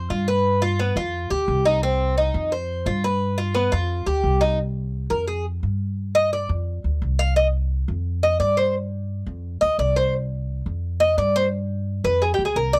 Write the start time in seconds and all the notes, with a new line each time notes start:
0.10 G2 F4
0.28 B4
0.62 F4
0.79 B3
0.96 F2 F4
1.30 D2 G4
1.48 C2
1.65 D#4
1.83 C4
2.18 D#4
2.34 F2
2.52 C5
2.86 G2 F4
3.04 B4
3.38 F4
3.55 B3
3.72 F2 F4
4.06 D2 G4
4.24 C2
4.41 D#4
5.10 F2 A#4
5.28 G#4
5.63 G2
6.15 D#5
6.33 D5
6.49 F2
6.84 D2
7.02 C2
7.19 F5
7.36 D#5
7.88 F2
8.23 D#5
8.39 G2 D5
8.57 C5
9.26 F2
9.61 D2 D#5
9.78 C2 D5
9.96 C5
10.66 F2
11.00 D#5
11.17 G2 D5
11.36 C5
12.04 F2 B4
12.22 G#4
12.34 G4
12.39 D2
12.45 G#4
12.56 C2 A#4
12.73 D5